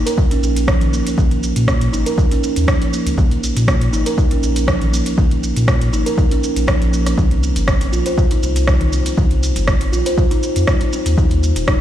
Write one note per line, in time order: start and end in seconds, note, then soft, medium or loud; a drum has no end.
0.06 0.17 A#4 loud
0.06 closed hi-hat medium
0.06 shaker medium
0.18 kick loud
0.18 shaker soft
0.31 0.37 C#4 loud
0.31 closed hi-hat soft
0.43 1.02 A#1 loud
0.43 shaker medium
0.56 closed hi-hat medium
0.56 shaker medium
0.68 0.81 F3 loud
0.68 kick loud
0.68 cross-stick loud
0.68 shaker soft
0.81 0.92 C#4 medium
0.81 closed hi-hat soft
0.81 mid tom medium
0.93 1.05 A#3 medium
0.93 shaker medium
1.07 closed hi-hat medium
1.07 shaker soft
1.18 1.52 A#1 loud
1.18 1.30 A#3 medium
1.18 kick loud
1.18 mid tom medium
1.18 shaker soft
1.31 closed hi-hat soft
1.43 shaker medium
1.56 1.89 A#2 medium
1.56 closed hi-hat medium
1.56 shaker medium
1.68 1.81 A#3 loud
1.68 kick loud
1.68 cross-stick loud
1.68 shaker soft
1.81 closed hi-hat soft
1.93 2.04 G#1 medium
1.93 2.05 D#4 loud
1.93 shaker medium
2.06 2.17 A#4 loud
2.06 closed hi-hat medium
2.06 shaker medium
2.18 kick loud
2.18 shaker soft
2.31 2.38 C#4 loud
2.31 closed hi-hat soft
2.44 shaker loud
2.56 2.66 D#2 loud
2.56 closed hi-hat medium
2.56 shaker medium
2.68 2.81 F3 loud
2.68 kick loud
2.68 cross-stick loud
2.68 shaker soft
2.81 2.92 C#4 medium
2.81 closed hi-hat soft
2.93 3.05 A#3 medium
2.93 shaker medium
3.07 3.16 C#2 loud
3.07 closed hi-hat medium
3.07 shaker medium
3.18 3.52 A#1 loud
3.18 3.30 A#3 medium
3.18 kick loud
3.18 mid tom medium
3.18 shaker soft
3.31 closed hi-hat soft
3.43 shaker medium
3.56 3.90 A#2 medium
3.56 closed hi-hat medium
3.56 shaker medium
3.68 3.81 A#3 loud
3.68 kick loud
3.68 cross-stick loud
3.68 shaker soft
3.81 closed hi-hat soft
3.93 4.04 G#1 medium
3.93 4.05 D#4 loud
3.93 shaker loud
4.06 4.17 A#4 loud
4.06 closed hi-hat medium
4.06 shaker medium
4.18 kick loud
4.18 shaker soft
4.31 4.37 C#4 loud
4.31 closed hi-hat soft
4.43 5.03 A#1 loud
4.43 shaker loud
4.56 closed hi-hat medium
4.56 shaker medium
4.67 4.80 F3 loud
4.67 kick loud
4.67 cross-stick loud
4.67 shaker soft
4.81 4.91 C#4 medium
4.81 closed hi-hat soft
4.81 mid tom medium
4.93 5.05 A#3 medium
4.93 shaker loud
5.06 closed hi-hat medium
5.06 shaker medium
5.18 5.52 A#1 loud
5.18 5.30 A#3 medium
5.18 kick loud
5.18 mid tom medium
5.18 shaker soft
5.31 closed hi-hat soft
5.43 shaker medium
5.56 5.90 A#2 medium
5.56 closed hi-hat medium
5.56 shaker medium
5.68 5.81 A#3 loud
5.68 kick loud
5.68 cross-stick loud
5.68 shaker soft
5.81 closed hi-hat soft
5.93 6.04 G#1 medium
5.93 6.05 D#4 loud
5.93 shaker medium
6.06 6.17 A#4 loud
6.06 closed hi-hat medium
6.06 shaker medium
6.18 kick loud
6.18 shaker soft
6.31 6.37 C#4 loud
6.31 closed hi-hat soft
6.44 shaker loud
6.56 7.14 A#1 loud
6.56 closed hi-hat medium
6.56 shaker medium
6.68 6.81 F3 loud
6.68 kick loud
6.68 cross-stick loud
6.68 shaker soft
6.81 6.92 C#4 medium
6.81 closed hi-hat soft
6.93 7.05 A#3 medium
6.93 shaker medium
7.06 cross-stick medium
7.06 closed hi-hat medium
7.06 shaker medium
7.18 7.52 C2 loud
7.18 7.30 C4 medium
7.18 kick loud
7.18 mid tom medium
7.18 shaker soft
7.31 closed hi-hat soft
7.43 shaker medium
7.56 7.89 G1 medium
7.56 closed hi-hat soft
7.56 shaker medium
7.68 7.81 C4 loud
7.68 kick loud
7.68 cross-stick loud
7.68 shaker soft
7.81 closed hi-hat soft
7.93 8.04 A#1 medium
7.93 8.05 F4 loud
7.93 shaker medium
8.06 8.17 C5 loud
8.06 closed hi-hat medium
8.06 shaker medium
8.18 kick loud
8.18 shaker soft
8.31 8.38 D#4 loud
8.31 closed hi-hat soft
8.43 9.02 C2 loud
8.43 shaker medium
8.56 closed hi-hat medium
8.56 shaker medium
8.67 8.81 G3 loud
8.67 kick loud
8.67 cross-stick loud
8.67 shaker soft
8.81 8.92 D#4 medium
8.81 closed hi-hat soft
8.81 mid tom medium
8.93 9.05 C4 medium
8.93 shaker medium
9.06 closed hi-hat medium
9.06 shaker soft
9.17 9.52 C2 medium
9.17 9.30 C4 medium
9.17 kick loud
9.17 mid tom medium
9.17 shaker soft
9.31 closed hi-hat soft
9.43 shaker medium
9.56 9.89 G1 medium
9.56 closed hi-hat medium
9.56 shaker soft
9.68 9.81 C4 loud
9.68 kick loud
9.68 cross-stick loud
9.68 shaker soft
9.81 closed hi-hat soft
9.92 10.04 A#1 medium
9.92 10.05 F4 loud
9.92 shaker medium
10.06 10.17 C5 loud
10.06 closed hi-hat medium
10.06 shaker soft
10.18 kick loud
10.18 shaker soft
10.31 10.37 D#4 loud
10.31 closed hi-hat soft
10.43 shaker medium
10.56 10.66 F2 loud
10.56 closed hi-hat medium
10.56 shaker medium
10.67 10.81 G3 loud
10.67 kick loud
10.67 cross-stick loud
10.67 shaker soft
10.81 10.91 D#4 medium
10.81 closed hi-hat soft
10.93 11.05 C4 medium
10.93 shaker medium
11.06 11.16 D#2 loud
11.06 closed hi-hat medium
11.06 shaker soft
11.18 11.52 D#2 loud
11.18 11.30 D#4 medium
11.18 kick loud
11.18 mid tom medium
11.18 shaker soft
11.31 closed hi-hat soft
11.43 shaker medium
11.56 11.81 D#1 medium
11.56 closed hi-hat medium
11.56 shaker soft
11.67 11.80 D#4 loud
11.67 kick loud
11.67 cross-stick loud
11.67 shaker soft